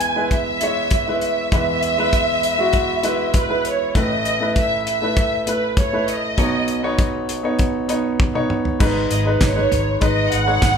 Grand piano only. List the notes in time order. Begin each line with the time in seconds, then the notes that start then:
Already playing: E2 E3 G#3 E4 B4
0.16 G#3 E4 B4
0.61 G#3 E4 C#5
1.07 G#3 E4 B4
1.52 E2 E3 G#3 E4 B4
1.98 G#3 E4 B4
2.58 G#3 E4 F#4
3.03 G#3 E4 B4
3.48 G#3 E4 B4
3.95 A1 A2 A3 E4 B4
4.40 A3 E4 B4
5.02 A3 E4 B4
5.47 A3 E4 B4
5.93 A3 E4 B4
6.37 B1 B2 B3 D#4 C#5
6.83 B3 D#4 C#5
7.43 B3 D#4 C#5
7.88 B3 D#4 C#5
8.34 B3 D#4 C#5
8.79 G#2 G#3 D#4 B4
9.25 G#3 D#4 B4
9.55 G#3 D#4 B4
10.00 G#3 D#4 B4
10.46 G#3 D#4 C#5